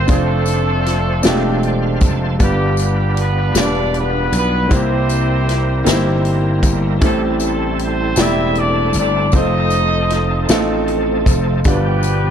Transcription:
Already playing: G3 A#3 C4 F4 B4 C5
0.06 F1 A3 C4 D4 F4 A4 C5, kick, closed hi-hat, tambourine
0.46 closed hi-hat, tambourine
0.86 snare, closed hi-hat
1.23 E1 G#3 C4 D4 F4 G4, snare, closed hi-hat, tambourine
1.29 A3
1.63 D5, closed hi-hat
1.83 F5
2.01 F1 A5, kick, closed hi-hat, tambourine
2.39 G1 G2 G3 B3 D4 F4 G4 B4, kick, closed hi-hat, tambourine
2.77 closed hi-hat, tambourine
2.83 G3 G4
3.17 B3 B4, closed hi-hat
3.54 E1 G3 B3 D4 F4 B4, snare, closed hi-hat, tambourine
3.59 D4 D5
3.94 closed hi-hat
4.00 B3 B4
4.32 B1, closed hi-hat, tambourine
4.36 B3 B4
4.68 C2 C3 G3 A#3 C4 D#4 E4 G4 A#4 C5, kick, closed hi-hat, tambourine
4.73 C4 E4 G4 C5
4.77 E4
5.09 closed hi-hat, tambourine
5.49 snare, closed hi-hat
5.84 G1 A#3 C4 D#4 G4 C5, snare, closed hi-hat, tambourine
5.92 E4
6.25 closed hi-hat
6.63 G1, kick, closed hi-hat, tambourine
6.98 A1 G3 A3 C4 E4 A4, kick, closed hi-hat, tambourine
7.02 A2 A3 C4 E4 G4 A4 C5
7.40 closed hi-hat, tambourine
7.44 A3 A4
7.79 closed hi-hat
7.84 C4 C5
8.16 E1 A3 C4 E4 G4 D5, snare, closed hi-hat, tambourine
8.22 E4 E5
8.55 D4 D5, closed hi-hat
8.93 G1, closed hi-hat, tambourine
8.98 D4 D5
9.32 F1 F3 A3 C4 D#4 F4 A4 C5, kick, closed hi-hat, tambourine
9.37 D#4 D#5
9.70 closed hi-hat, tambourine
10.10 snare, closed hi-hat
10.48 A1 A3 C4 D#4 F4 A4, snare, closed hi-hat, tambourine
10.88 closed hi-hat
11.26 F1, kick, closed hi-hat, tambourine
11.64 G1 G2 B2 F3 G3 B3 D4 F4 G4 B4, kick, closed hi-hat, tambourine
11.68 G4
12.03 closed hi-hat, tambourine

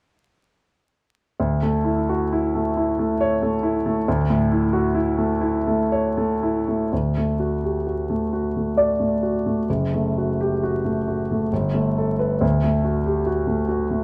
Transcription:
1.40 D2
1.62 A3
1.84 E4
2.09 F#4
2.32 E4
2.55 A3
2.77 E4
2.99 A3
3.21 C#5
3.42 A3
3.63 E4
3.86 A3
4.08 D2
4.30 A2
4.52 E4
4.73 F#4
4.95 E4
5.18 A3
5.41 E4
5.67 A3
5.92 C#5
6.17 A3
6.43 E4
6.68 A3
6.93 D2
7.17 A3
7.40 F#4
7.64 G4
7.87 F#4
8.10 A3
8.33 F#4
8.56 A3
8.77 D5
9.00 A3
9.23 F#4
9.46 A3
9.69 F#1
9.94 A3
10.18 F#4
10.41 G4
10.63 F#4
10.85 A3
11.08 F#4
11.31 A3
11.53 G1
11.74 A3
11.98 A4
12.19 B4
12.41 D2
12.63 A3
12.84 F#4
13.06 G4
13.26 F#4
13.47 A3
13.69 F#4
13.91 A3

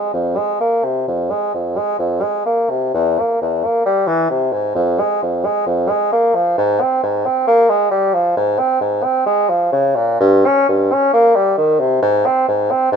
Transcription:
Already playing: G#3
0.14 F2
0.37 G#3
0.60 A#3
0.84 C3
1.08 F2
1.31 G#3
1.54 F2
1.77 G#3
1.99 F2
2.22 G#3
2.46 A#3
2.70 C3
2.94 E2
3.19 A#3
3.42 E2
3.65 A#3
3.86 G3
4.07 E3
4.30 C3
4.53 G#2
4.75 F2
4.99 G#3
5.23 F2
5.45 G#3
5.67 F2
5.89 G#3
6.13 A#3
6.35 F3
6.58 G#2
6.81 C4
7.03 G#2
7.26 C4
7.47 A#3
7.70 G#3
7.91 G3
8.14 F3
8.37 G#2
8.58 C4
8.81 G#2
9.04 C4
9.26 G#3
9.49 F3
9.72 C#3
9.96 A#2
10.20 G2
10.46 C#4
10.69 G2
10.93 C#4
11.14 A#3
11.36 G3
11.58 D#3
11.80 C3
12.02 G#2
12.26 C4
12.48 G#2
12.71 C4
12.92 G#2

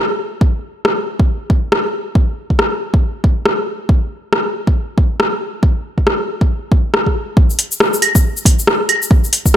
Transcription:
0.41 kick
0.85 cross-stick
1.20 kick
1.50 kick
1.72 cross-stick
2.15 kick
2.50 kick
2.59 cross-stick
2.94 kick
3.24 kick
3.46 cross-stick
3.89 kick
4.33 cross-stick
4.67 kick
4.98 kick
5.20 cross-stick
5.63 kick
5.98 kick
6.07 cross-stick
6.41 kick
6.72 kick
6.94 cross-stick
7.06 kick
7.37 kick
7.50 shaker
7.59 open hi-hat
7.72 shaker
7.80 cross-stick
7.94 shaker
8.02 open hi-hat, claves
8.15 kick, shaker
8.37 shaker
8.45 kick, open hi-hat
8.59 shaker
8.67 cross-stick
8.89 open hi-hat, claves
9.02 shaker
9.11 kick
9.24 shaker
9.33 open hi-hat
9.46 kick, shaker

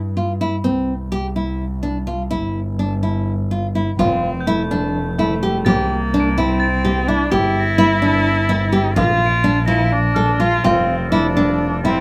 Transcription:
Already playing: G2
0.17 F4
0.41 E4
0.64 C2 C4
1.12 G4
1.36 E4
1.83 D4
2.07 F4
2.30 G1 E4
2.79 D4
3.03 E4
3.51 F4
3.75 E4
3.99 F1 C4 F4, frame drum
4.41 G6
4.46 A3 E4
4.71 D4, frame drum
4.95 frame drum
5.17 A3 E4, frame drum
5.42 G4, frame drum
5.65 C2 A#3 G4 A6, frame drum
6.14 D4
6.20 D7
6.37 C4 E4, frame drum
6.60 A6, frame drum
6.85 G4, frame drum
7.08 D4 E4, frame drum
7.31 G1 E4 G4, frame drum
7.60 A#6
7.78 E4
8.02 D4 A6, frame drum
8.49 E4, frame drum
8.72 G4, frame drum
8.96 A#1 F4, frame drum
9.26 D7
9.44 D4
9.66 E4 F4 A#6, frame drum
9.92 D4, frame drum
10.14 A4 F6, frame drum
10.40 F4
10.64 F1 F3 C4 F4 G4 A4, frame drum
11.11 D4 E4
11.37 D4, frame drum
11.61 frame drum
11.83 C4 E4, frame drum

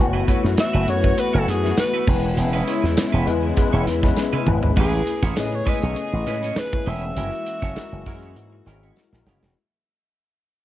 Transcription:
Already playing: F#1 E3 A3 B3 E4 F#4
0.00 F#4 B4
0.13 A3 E4 F#4 B4
0.27 A3 B3 E4 F#4 B4 C#5, kick, closed hi-hat
0.43 F#2, muted clean electric guitar stroke, snare
0.57 E5, muted clean electric guitar stroke, snare, closed hi-hat, tambourine
0.73 F#1 A3 E4 F#4 B4
0.87 F#2 A3 B3 E4 F#4 B4 C#5, muted clean electric guitar stroke, closed hi-hat
1.03 muted clean electric guitar stroke, kick
1.17 A3 B3 E4 F#4 B4, muted clean electric guitar stroke, closed hi-hat
1.33 F#1 A3 E4 F#4 A4 C#5
1.47 F#2 G#4, muted clean electric guitar stroke, snare, closed hi-hat
1.63 A3 B3 E4 F#4 B4, muted clean electric guitar stroke, snare
1.77 B4, muted clean electric guitar stroke, snare, closed hi-hat, tambourine
1.94 A3 E4 F#4 B4
2.07 E1 C#3 F#3 G#3 B3 C#4 E4 B4, muted clean electric guitar stroke, kick, crash
2.14 G#3
2.23 muted clean electric guitar stroke
2.34 E1 F#4, muted clean electric guitar stroke, closed hi-hat
2.39 E4
2.53 G#3 C#4 E4 B4
2.67 G#3 B3 C#4 E4 B4 C#5, closed hi-hat
2.83 E2, muted clean electric guitar stroke, snare
2.96 muted clean electric guitar stroke, snare, closed hi-hat, tambourine
3.12 E1 G#3 C#4 E4 B4
3.26 E2 G#3 B3 C#4 E4 B4, muted clean electric guitar stroke, closed hi-hat
3.43 muted clean electric guitar stroke
3.56 G#3 B3 C#4 E4 B4, muted clean electric guitar stroke, kick, closed hi-hat
3.73 E1 G#3 C#4 E4 C#5
3.87 E2, muted clean electric guitar stroke, snare, closed hi-hat
4.03 G#3 B3 C#4 E4 B4, muted clean electric guitar stroke, kick, snare
4.16 muted clean electric guitar stroke, snare, tambourine
4.33 G#3 C#4 E4 B4, high tom
4.46 G#1 G#3 B3 C#4 E4 B4, mid tom
4.63 muted clean electric guitar stroke, floor tom
4.76 A1 C#3 G#3 A3 B3 C#4 E4 G#4 B4, kick, crash
4.92 muted clean electric guitar stroke, closed hi-hat
5.06 muted clean electric guitar stroke, closed hi-hat
5.22 A1 G#3 C#4 E4 C#5, kick, snare, closed hi-hat
5.36 A2 A3 C#4 E4 G#4 B4 D#5, muted clean electric guitar stroke, snare, closed hi-hat, tambourine
5.52 C#5, muted clean electric guitar stroke, closed hi-hat
5.66 G#3 A3 C#4 E4 G#4 B4 D#5, kick, open hi-hat
5.82 B1 G#3 C#4 E4 C#5, closed hi-hat
5.96 muted clean electric guitar stroke, closed hi-hat
6.12 A1, muted clean electric guitar stroke
6.26 A2 G#3 A3 C#4 E4 G#4 B4, snare, closed hi-hat
6.43 G#3 C#4 E4 C#5, snare, closed hi-hat
6.56 B4, muted clean electric guitar stroke, snare, closed hi-hat, tambourine
6.72 A3 C#4 E4 G#4 C#5, muted clean electric guitar stroke, kick, closed hi-hat
6.86 E1 G#3 C#4 E4 B4 E5, open hi-hat
7.03 muted clean electric guitar stroke, closed hi-hat
7.16 F#1 E3 G#3 A#3 C#4 E4 F#4 A#4, closed hi-hat
7.33 muted clean electric guitar stroke, closed hi-hat
7.46 muted clean electric guitar stroke, closed hi-hat
7.62 F#1 G#3 C#4 E4 C#5, kick, snare, closed hi-hat
7.75 G#3 C#4 E4 F#4 A#4, muted clean electric guitar stroke, snare, closed hi-hat, tambourine
7.92 F#1, muted clean electric guitar stroke, closed hi-hat
8.06 F#2 G#3 C#4 E4 F#4 A#4, kick, open hi-hat
8.23 G#3 C#4 E4 C#5, closed hi-hat
8.36 G#2, muted clean electric guitar stroke, closed hi-hat
8.53 muted clean electric guitar stroke
8.66 G#1 G#3 C#4 E4 F#4 A#4, snare, closed hi-hat
8.83 G#3 C#4 E4 C#5, closed hi-hat
8.96 muted clean electric guitar stroke, snare, tambourine
9.12 A#1 G#3 C#4 E4 F#4 A#4, muted clean electric guitar stroke, snare
9.26 F#1 G#3 C#4 E4 A#4, snare
9.42 E1, muted clean electric guitar stroke, snare

